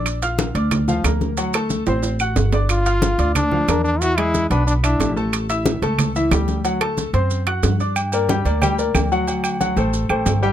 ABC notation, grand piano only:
X:1
M:4/4
L:1/8
Q:1/4=182
K:Dphr
V:1 name="Grand piano"
[Ddd'] [Fff']2 [Ddd']2 [F,Ff] [B,Bb]2 | [^F,^F^f] [A,Aa]2 [Ccc']2 [Ff^f']2 [Ddd']- | [Ddd'] [Fff']2 [Ddd']2 [F,Ff] [B,Bb]2 | [=E,=E=e] [^G,^G^g]2 [=B,=B=b]2 [Ee=e']2 [A,Aa]- |
[A,Aa] [=E=e=e']2 [A,Aa]2 [=E,Ee] [G,Gg]2 | [^F,^F^f] [A,Aa]2 [Ccc']2 [Ff^f']2 [Ddd'] | [K:Gm] z [B,Bd] [G,Gg] [B,Bd] [G,Gg] [B,Bd]2 [^F,^F^f] | [^F,^F^f]2 [F,Ff] [A,Ac]2 [A,Ac]2 [G,Gg] |]